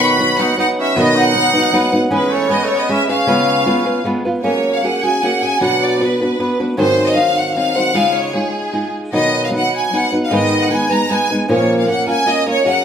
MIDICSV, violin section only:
0, 0, Header, 1, 2, 480
1, 0, Start_track
1, 0, Tempo, 385852
1, 1194, Time_signature, 3, 2, 24, 8
1, 4549, Tempo, 391389
1, 15817, End_track
2, 0, Start_track
2, 0, Title_t, "Violin section"
2, 0, Program_c, 0, 48
2, 6, Note_on_c, 0, 83, 89
2, 487, Note_off_c, 0, 83, 0
2, 498, Note_on_c, 0, 78, 81
2, 723, Note_off_c, 0, 78, 0
2, 743, Note_on_c, 0, 78, 83
2, 848, Note_off_c, 0, 78, 0
2, 1002, Note_on_c, 0, 76, 85
2, 1200, Note_off_c, 0, 76, 0
2, 1242, Note_on_c, 0, 75, 97
2, 1465, Note_off_c, 0, 75, 0
2, 1487, Note_on_c, 0, 78, 108
2, 2422, Note_off_c, 0, 78, 0
2, 2666, Note_on_c, 0, 71, 78
2, 2878, Note_off_c, 0, 71, 0
2, 2904, Note_on_c, 0, 73, 88
2, 3124, Note_off_c, 0, 73, 0
2, 3147, Note_on_c, 0, 75, 73
2, 3289, Note_off_c, 0, 75, 0
2, 3326, Note_on_c, 0, 73, 91
2, 3458, Note_off_c, 0, 73, 0
2, 3488, Note_on_c, 0, 75, 64
2, 3618, Note_off_c, 0, 75, 0
2, 3636, Note_on_c, 0, 76, 98
2, 3772, Note_off_c, 0, 76, 0
2, 3875, Note_on_c, 0, 77, 85
2, 5002, Note_off_c, 0, 77, 0
2, 5502, Note_on_c, 0, 73, 80
2, 5847, Note_off_c, 0, 73, 0
2, 5885, Note_on_c, 0, 77, 60
2, 5975, Note_on_c, 0, 78, 68
2, 6000, Note_off_c, 0, 77, 0
2, 6223, Note_on_c, 0, 80, 78
2, 6235, Note_off_c, 0, 78, 0
2, 6467, Note_off_c, 0, 80, 0
2, 6475, Note_on_c, 0, 78, 76
2, 6723, Note_off_c, 0, 78, 0
2, 6726, Note_on_c, 0, 80, 81
2, 6946, Note_on_c, 0, 78, 87
2, 6958, Note_off_c, 0, 80, 0
2, 7180, Note_off_c, 0, 78, 0
2, 7201, Note_on_c, 0, 74, 78
2, 7434, Note_off_c, 0, 74, 0
2, 7443, Note_on_c, 0, 71, 66
2, 8158, Note_off_c, 0, 71, 0
2, 8392, Note_on_c, 0, 72, 93
2, 8723, Note_off_c, 0, 72, 0
2, 8731, Note_on_c, 0, 75, 67
2, 8841, Note_on_c, 0, 77, 86
2, 8853, Note_off_c, 0, 75, 0
2, 9096, Note_off_c, 0, 77, 0
2, 9111, Note_on_c, 0, 78, 73
2, 9326, Note_on_c, 0, 77, 81
2, 9341, Note_off_c, 0, 78, 0
2, 9562, Note_off_c, 0, 77, 0
2, 9584, Note_on_c, 0, 78, 88
2, 9814, Note_on_c, 0, 77, 84
2, 9818, Note_off_c, 0, 78, 0
2, 10058, Note_on_c, 0, 73, 78
2, 10064, Note_off_c, 0, 77, 0
2, 10294, Note_on_c, 0, 68, 65
2, 10297, Note_off_c, 0, 73, 0
2, 11033, Note_off_c, 0, 68, 0
2, 11280, Note_on_c, 0, 75, 86
2, 11617, Note_off_c, 0, 75, 0
2, 11655, Note_on_c, 0, 77, 57
2, 11704, Note_off_c, 0, 77, 0
2, 11789, Note_on_c, 0, 78, 86
2, 12005, Note_off_c, 0, 78, 0
2, 12037, Note_on_c, 0, 80, 72
2, 12238, Note_off_c, 0, 80, 0
2, 12275, Note_on_c, 0, 78, 82
2, 12501, Note_off_c, 0, 78, 0
2, 12635, Note_on_c, 0, 77, 63
2, 12715, Note_off_c, 0, 77, 0
2, 12734, Note_on_c, 0, 75, 92
2, 13080, Note_on_c, 0, 78, 74
2, 13084, Note_off_c, 0, 75, 0
2, 13192, Note_off_c, 0, 78, 0
2, 13202, Note_on_c, 0, 80, 78
2, 13441, Note_off_c, 0, 80, 0
2, 13456, Note_on_c, 0, 82, 83
2, 13678, Note_off_c, 0, 82, 0
2, 13697, Note_on_c, 0, 80, 84
2, 13929, Note_off_c, 0, 80, 0
2, 14165, Note_on_c, 0, 73, 83
2, 14492, Note_off_c, 0, 73, 0
2, 14544, Note_on_c, 0, 77, 64
2, 14637, Note_on_c, 0, 78, 74
2, 14642, Note_off_c, 0, 77, 0
2, 14861, Note_off_c, 0, 78, 0
2, 14890, Note_on_c, 0, 80, 82
2, 15099, Note_off_c, 0, 80, 0
2, 15128, Note_on_c, 0, 75, 86
2, 15365, Note_off_c, 0, 75, 0
2, 15374, Note_on_c, 0, 73, 99
2, 15582, Note_off_c, 0, 73, 0
2, 15626, Note_on_c, 0, 78, 85
2, 15817, Note_off_c, 0, 78, 0
2, 15817, End_track
0, 0, End_of_file